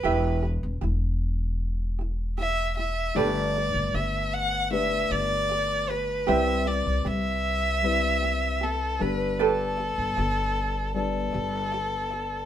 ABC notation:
X:1
M:4/4
L:1/16
Q:1/4=77
K:G
V:1 name="Violin"
B2 z8 z2 e2 e2 | d4 e2 f2 e2 d4 B2 | e2 d2 e8 A2 B2 | A8 A8 |]
V:2 name="Ukulele"
[EGBe]2 [EG]2 [EG]2 z4 [EG]2 [EG]2 [EG]2 | [GABd]2 [Gd]2 [Gd]2 z4 [Gd]2 [Gd]2 [Gd]2 | [CGBe]2 [CG]2 [CG]2 z4 [CG]2 [CG]2 [Gd]2 | [GABd]2 [Gd]2 [Gd]2 z4 [Gd]2 [Gd]2 [Gd]2 |]
V:3 name="Upright piano"
z16 | [A,DGB]6 z2 [A,DGB]6 z2 | [G,CEB]6 z2 [G,CEB]6 [G,B,DA]2- | [G,B,DA]4 z4 [G,B,DA]6 z2 |]
V:4 name="Upright bass" clef=bass
E,,,3 E,,, E,,,12 | G,,,3 G,,, G,,,6 G,,,6 | C,,3 C,, C,,8- C,,2 G,,,2- | G,,,3 G,,, G,,,6 G,,,6 |]